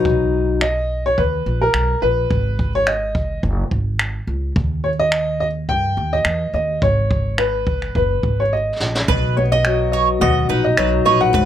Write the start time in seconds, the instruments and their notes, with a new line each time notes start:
Already playing: steel-string acoustic guitar B2 D#3 F#3 D#4 B4
0.05 upright bass B1, kick
0.61 upright piano D#5, finger snap
1.06 upright piano C#5
1.18 upright bass D#2, upright piano B4, kick
1.46 upright bass A#1
1.61 upright piano A#4
1.74 upright bass B1, finger snap
2.02 upright bass A#1, upright piano B4
2.30 upright bass G#1, kick
2.59 kick
2.75 upright piano C#5
2.87 upright piano D#5, finger snap
3.15 kick
3.43 upright bass F#1, kick
3.71 upright bass G#1, kick
3.99 finger snap
4.27 upright bass C#2
4.56 upright bass D#2, kick
4.84 upright piano C#5
5.00 upright piano D#5
5.12 finger snap
5.40 upright piano D#5
5.69 upright bass G2, upright piano G5, kick
5.97 upright bass D#2
6.13 upright piano D#5
6.25 upright bass E2, finger snap
6.54 upright bass D#2, upright piano D#5
6.82 upright bass G#1, upright piano C#5, kick
7.11 kick
7.38 upright piano B4, finger snap
7.67 kick
7.82 finger snap
7.95 upright bass F#1, upright piano B4, kick
8.23 upright bass G#1, kick
8.40 upright piano C#5
8.53 upright piano D#5
8.80 upright bass A#1, snare
8.95 snare
9.08 upright bass B1, steel-string acoustic guitar B2, mandolin B4, kick
9.37 steel-string acoustic guitar B3, upright piano C#5
9.52 upright piano D#5, mandolin D#5
9.65 steel-string acoustic guitar F#3, finger snap
9.92 mandolin C#5, upright piano D#5
10.21 upright bass D#2, steel-string acoustic guitar B2, mandolin D#5, upright piano F#5, kick
10.49 upright bass A#1, steel-string acoustic guitar D#4, mandolin B4
10.64 upright piano D#5
10.77 upright bass B1, steel-string acoustic guitar F#3, mandolin B4, finger snap
11.05 upright bass A#1, steel-string acoustic guitar B4, mandolin C#5, upright piano D#5
11.21 upright piano F#5
11.33 upright bass G#1, steel-string acoustic guitar G#2, mandolin B4, kick